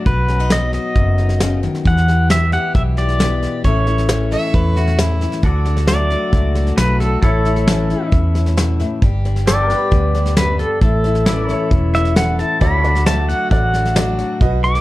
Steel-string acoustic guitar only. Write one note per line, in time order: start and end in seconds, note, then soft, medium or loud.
0.07 0.96 B2 medium
0.07 0.73 F#4 medium
0.28 0.40 C#4 medium
0.40 1.18 D#4 soft
0.51 1.83 F#3 medium
0.51 1.83 B3 medium
0.74 1.85 F#4 medium
0.96 1.86 F#2 medium
1.19 1.83 D#4 medium
1.41 1.62 C#3 medium
1.63 1.85 D#3 medium
1.85 3.64 E3 medium
1.85 2.07 G4 medium
2.08 2.52 G4 medium
2.30 3.18 B3 medium
2.30 3.62 E4 medium
2.53 2.97 G4 medium
2.75 3.65 B2 medium
2.98 3.19 G4 medium
3.19 3.61 B3 medium
3.19 3.41 G4 medium
3.43 3.62 G4 medium
3.64 4.52 A2 medium
3.64 4.08 E3 medium
3.64 4.09 C#4 medium
3.64 3.86 E4 medium
3.64 4.31 A4 medium
3.87 4.76 E4 medium
4.09 4.97 E3 medium
4.09 5.41 C#4 medium
4.32 4.98 A4 medium
4.54 5.41 A2 medium
4.77 5.21 E4 medium
4.99 5.43 E3 medium
4.99 5.41 A4 medium
5.22 5.41 E4 medium
5.43 7.20 D3 medium
5.43 6.11 F#4 medium
5.67 6.55 D4 medium
5.88 6.77 F#3 medium
5.88 7.68 A3 medium
6.12 6.78 F#4 medium
6.34 7.20 A2 medium
6.56 7.00 D4 medium
6.78 7.20 F#3 medium
6.78 7.23 F#4 medium
7.01 7.20 D4 medium
7.23 8.10 A2 medium
7.23 7.45 E4 medium
7.46 7.89 E4 medium
7.68 9.02 E3 medium
7.68 9.00 C#4 medium
7.90 8.34 E4 medium
8.12 8.78 A2 medium
8.35 9.00 E4 medium
8.57 8.79 B2 medium
8.80 9.02 A2 medium
9.02 10.36 G2 medium
9.02 9.69 G4 medium
9.25 10.13 D4 medium
9.47 10.79 G3 medium
9.47 10.79 B3 medium
9.70 10.79 G4 medium
9.91 10.79 D3 medium
10.15 10.79 D4 medium
10.37 10.59 F#2 medium
10.59 10.81 G2 medium
10.82 11.70 A2 medium
10.82 11.04 E4 medium
11.06 11.49 E4 medium
11.27 12.15 E3 medium
11.27 12.59 C#4 medium
11.50 11.93 E4 medium
11.71 12.59 A2 medium
11.95 12.38 E4 medium
12.16 12.61 E3 medium
12.16 12.59 A4 medium
12.39 12.59 E4 medium
12.61 14.38 D3 medium
12.61 13.29 F#4 medium
12.84 13.74 D4 medium
13.06 13.95 F#3 medium
13.06 14.41 A3 medium
13.29 13.96 F#4 medium
13.51 14.38 A2 medium
13.75 14.18 D4 medium
13.96 14.38 F#3 medium
13.96 14.41 F#4 medium
14.20 14.39 D4 medium
14.41 14.81 B2 medium
14.41 14.81 F#4 medium
14.65 14.81 D#4 medium